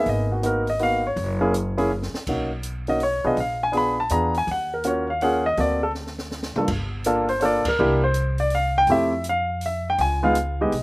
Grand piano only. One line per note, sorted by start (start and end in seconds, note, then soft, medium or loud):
0.00 0.41 A#3 medium
0.00 0.41 B3 soft
0.00 0.41 D#4 soft
0.00 0.41 G#4 medium
0.09 0.31 D#5 medium
0.32 0.42 F#4 medium
0.43 0.65 A#3 medium
0.43 0.65 B3 soft
0.43 0.65 D#4 soft
0.43 0.65 F#4 medium
0.43 0.68 A#4 medium
0.70 0.81 D#5 medium
0.80 1.02 A#3 medium
0.80 1.02 B3 medium
0.80 1.02 D#4 soft
0.80 1.02 F#4 medium
0.80 1.05 F5 medium
1.07 1.88 C#5 medium
1.41 1.52 A#3 medium
1.41 1.52 C#4 medium
1.41 1.53 E4 medium
1.41 1.52 G#4 medium
1.77 1.89 A#3 medium
1.77 1.89 C#4 medium
1.77 1.89 E4 medium
1.77 1.89 G#4 medium
2.28 2.50 A#3 soft
2.28 2.50 C#4 soft
2.28 2.50 D#4 soft
2.28 2.50 F#4 medium
2.88 2.99 A#3 soft
2.88 3.00 C#4 soft
2.88 3.00 D#4 soft
2.88 3.00 F#4 medium
2.88 3.01 D#5 medium
3.03 3.25 C#5 medium
3.24 3.36 B3 medium
3.24 3.36 D4 medium
3.24 3.36 F4 medium
3.24 3.36 G#4 medium
3.24 3.38 D#5 medium
3.40 3.62 F5 medium
3.63 3.75 G#5 medium
3.72 3.95 B3 medium
3.72 3.95 D4 soft
3.72 3.95 F4 medium
3.72 3.95 G#4 medium
3.77 3.99 B5 medium
4.00 4.11 A5 medium
4.10 4.33 B3 medium
4.10 4.32 D4 medium
4.10 4.33 F4 medium
4.10 4.33 G#4 medium
4.10 4.35 A#5 medium
4.38 4.49 G#5 medium
4.51 4.73 F#5 medium
4.74 4.85 A#4 medium
4.84 5.06 A#3 medium
4.84 5.06 C#4 medium
4.84 5.06 F4 soft
4.84 5.06 F#4 medium
4.84 5.09 C#5 medium
5.10 5.22 F5 medium
5.22 5.44 A#3 medium
5.22 5.44 C#4 medium
5.22 5.44 F4 medium
5.22 5.44 G#4 medium
5.22 5.45 F#5 medium
5.46 5.58 D#5 medium
5.58 5.80 A#3 soft
5.58 5.80 C4 soft
5.58 5.80 F#4 soft
5.58 5.80 A4 soft
5.58 5.83 D5 medium
5.83 5.90 A4 medium
6.57 6.68 G2 medium
6.57 6.68 A#3 soft
6.57 6.68 D4 soft
6.57 6.68 F4 soft
6.57 6.68 A4 medium
7.06 7.27 A#3 medium
7.06 7.27 D4 medium
7.06 7.27 F4 medium
7.06 7.27 A4 medium
7.29 7.41 C5 medium
7.40 7.64 A#3 medium
7.40 7.64 D4 medium
7.40 7.64 F4 medium
7.40 7.64 A4 medium
7.40 7.42 C#5 medium
7.45 7.67 D5 medium
7.68 8.01 A#4 medium
7.79 8.01 A#3 medium
7.79 8.01 D4 medium
7.79 8.01 E4 medium
7.79 8.01 G4 medium
8.04 8.37 C5 medium
8.40 8.52 D5 medium
8.55 8.77 F5 medium
8.78 8.89 G5 loud
8.89 9.11 A3 medium
8.89 9.11 C4 medium
8.89 9.11 E4 medium
8.89 9.11 G4 medium
8.89 9.24 E5 medium
9.29 9.62 F5 medium
9.66 9.87 E5 medium
9.90 10.00 G5 medium
10.01 10.23 G#5 medium
10.23 10.35 G#3 medium
10.23 10.34 B3 medium
10.23 10.35 D#4 medium
10.23 10.35 F4 medium
10.23 10.58 F5 medium
10.61 10.72 G#3 medium
10.61 10.72 B3 soft
10.61 10.72 D#4 medium
10.61 10.72 G4 medium
10.61 10.83 D#5 medium